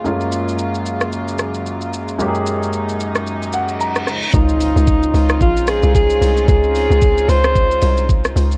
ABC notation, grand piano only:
X:1
M:4/4
L:1/8
Q:"Swing 16ths" 1/4=112
K:Db
V:1 name="Grand piano"
z8 | z4 z g b2 | z8 | z8 |]
V:2 name="Grand piano"
[G,,A,=A,B,DF]8 | [G,,A,B,D=GA]6- [_G,,A,B,D=GA] z | z8 | z8 |]